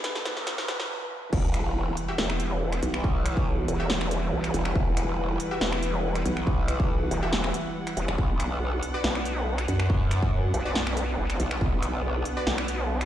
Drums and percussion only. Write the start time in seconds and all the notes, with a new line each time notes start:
0.04 snare, closed hi-hat
0.15 snare, closed hi-hat
0.25 snare, closed hi-hat
0.37 snare
0.47 snare, closed hi-hat
0.58 snare
0.68 snare, closed hi-hat
0.80 snare
1.33 kick, crash
1.54 finger snap, closed hi-hat
1.97 closed hi-hat
2.18 snare
2.30 finger snap
2.40 closed hi-hat
2.72 finger snap, closed hi-hat
2.83 closed hi-hat
2.94 finger snap
3.04 kick
3.26 finger snap, closed hi-hat
3.37 kick
3.68 closed hi-hat
3.90 snare
4.01 finger snap
4.11 closed hi-hat
4.44 finger snap, closed hi-hat
4.54 closed hi-hat
4.65 finger snap
4.75 kick
4.97 finger snap, closed hi-hat
5.40 closed hi-hat
5.61 snare
5.72 finger snap
5.83 closed hi-hat
6.15 finger snap, closed hi-hat
6.26 closed hi-hat
6.37 finger snap
6.47 kick
6.68 finger snap, closed hi-hat
6.80 kick
7.11 closed hi-hat
7.33 snare
7.44 finger snap
7.54 closed hi-hat
7.87 finger snap, closed hi-hat
7.97 closed hi-hat
8.08 finger snap
8.18 kick
8.40 finger snap, closed hi-hat
8.83 closed hi-hat
9.04 snare
9.15 finger snap
9.25 closed hi-hat
9.58 finger snap, closed hi-hat
9.68 closed hi-hat
9.80 finger snap
9.90 kick
10.11 finger snap, closed hi-hat
10.22 kick
10.54 closed hi-hat
10.75 snare
10.87 finger snap
10.97 closed hi-hat
11.30 finger snap, closed hi-hat
11.40 closed hi-hat
11.51 finger snap
11.61 kick
11.82 finger snap, closed hi-hat
12.25 closed hi-hat
12.47 snare
12.58 finger snap
12.68 closed hi-hat
13.01 finger snap, closed hi-hat